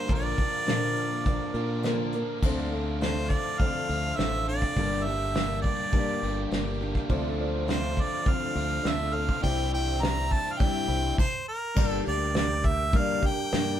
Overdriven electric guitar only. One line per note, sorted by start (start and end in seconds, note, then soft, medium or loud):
0.00 0.10 D4 medium
0.09 1.53 A#2 medium
0.09 1.53 D3 medium
0.09 1.53 F3 loud
0.09 1.54 A#3 medium
0.09 1.54 D4 medium
0.09 1.54 A#4 medium
1.56 1.83 A#2 medium
1.56 1.83 D3 medium
1.56 1.84 F3 medium
1.56 1.83 A#3 medium
1.56 1.83 D4 medium
1.56 1.83 A#4 medium
1.84 2.41 A#2 medium
1.84 2.41 D3 medium
1.84 2.41 F3 medium
1.84 2.41 A#3 medium
1.84 2.42 D4 medium
1.84 2.42 A#4 medium
2.42 3.87 D3 medium
2.42 3.87 A3 medium
2.42 3.90 D4 medium
2.42 3.88 F4 medium
3.89 4.18 D3 medium
3.89 4.17 A3 medium
3.89 4.20 D4 medium
3.89 4.16 F4 medium
4.19 4.75 D3 medium
4.19 4.75 A3 medium
4.19 4.79 D4 medium
4.19 4.76 F4 medium
4.78 6.21 G2 medium
4.78 6.21 D3 medium
4.78 6.22 G3 medium
4.78 6.22 A#3 medium
4.78 6.24 D4 medium
4.78 6.22 G4 medium
6.24 6.51 G2 medium
6.24 6.51 D3 medium
6.24 6.51 G3 medium
6.24 6.51 A#3 medium
6.24 6.54 D4 medium
6.24 6.50 G4 medium
6.52 7.08 G2 medium
6.52 7.08 D3 medium
6.52 7.09 G3 medium
6.52 7.09 A#3 medium
6.52 7.11 D4 medium
6.52 7.10 G4 medium
7.09 8.54 D3 medium
7.09 8.54 A3 medium
7.09 8.56 D4 medium
7.09 8.55 F4 loud
8.56 8.83 D3 medium
8.56 8.84 A3 medium
8.56 8.87 D4 medium
8.56 8.83 F4 medium
8.85 9.41 D3 medium
8.85 9.42 A3 medium
8.85 9.43 D4 medium
8.85 9.43 F4 medium
9.43 10.87 C3 medium
9.43 10.88 E3 medium
9.43 10.88 G3 medium
9.43 10.88 C4 loud
9.43 10.87 E4 loud
10.88 11.18 C3 medium
10.88 11.17 E3 medium
10.88 11.17 G3 medium
10.88 11.17 C4 medium
10.88 11.16 E4 medium